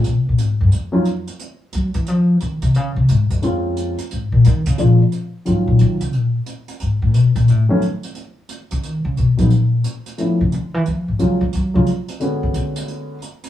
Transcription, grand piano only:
X:1
M:4/4
L:1/8
Q:"Swing" 1/4=178
K:Bbm
V:1 name="Grand piano"
z4 z [G,B,DEF] z2 | z8 | z4 [A,B,CDF]3 z | z4 [F,A,B,=DF] z3 |
[K:Ebm] [E,G,B,DF]3 z4 z | z4 z [^D,^F,=A,=B,_D] z2 | z6 z [G,A,B,CE] | z4 [F,=A,CD=E] z3 |
z2 [G,A,B,DF] z2 [G,A,B,DF] z2 | [=D,^G,=B,^C^F]4- [D,G,B,CF] z3 |]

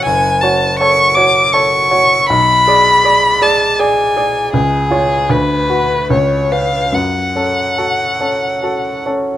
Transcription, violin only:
X:1
M:3/4
L:1/8
Q:1/4=79
K:F#m
V:1 name="Violin"
g a c' d' c'2 | b3 a g2 | G2 B2 c ^e | f4- f z |]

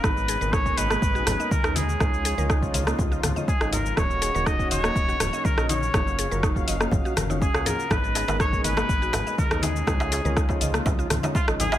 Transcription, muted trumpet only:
X:1
M:4/4
L:1/8
Q:1/4=122
K:Abdor
V:1 name="Muted trumpet"
c2 d c3 B A- | A3 z3 A B | d2 e d3 B d- | d3 z3 A B |
c2 d c3 B A- | A3 z3 F A |]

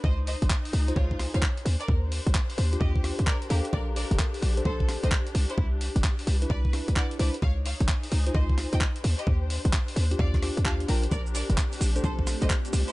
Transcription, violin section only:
X:1
M:4/4
L:1/16
Q:"Swing 16ths" 1/4=130
K:Bb
V:1 name="Violin section"
[ce] z [ce] z4 z [F_d] z2 [df] z3 [B=d] | z8 [Ge]2 z2 [Bd] z [GB] z | [Bd] z [Bd] z4 z [Ac] z2 [ce] z3 [=Ec] | z8 [=Bd]2 z2 [d_g] z [Bd] z |
[_df] z [df] z4 z [ce] z2 [eg] z3 [Ge] | z8 [df]2 z2 [fa] z [gb] z | [Bd] z [Bd] z4 z [Ac] z2 [ce] z3 [=Ec] |]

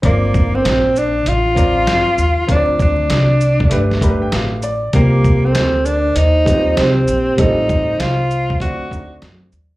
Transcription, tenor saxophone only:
X:1
M:4/4
L:1/16
Q:"Swing 16ths" 1/4=98
K:Gm
V:1 name="Tenor saxophone"
B,3 C3 D2 F8 | D2 D8 z6 | B,3 C3 D2 E4 C4 | E4 F4 ^F4 z4 |]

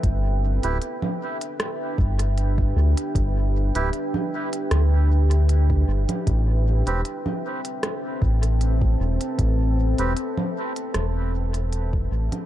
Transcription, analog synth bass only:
X:1
M:4/4
L:1/16
Q:"Swing 16ths" 1/4=77
K:Am
V:1 name="Analog synth bass" clef=bass
G,,,3 D,,, z6 G,,,4 D,, z | G,,,3 D,,, z4 D,,6 G,,, z | A,,,3 E,,, z6 A,,,4 E,,, z | A,,,3 E,,, z4 E,,,6 A,,, z |]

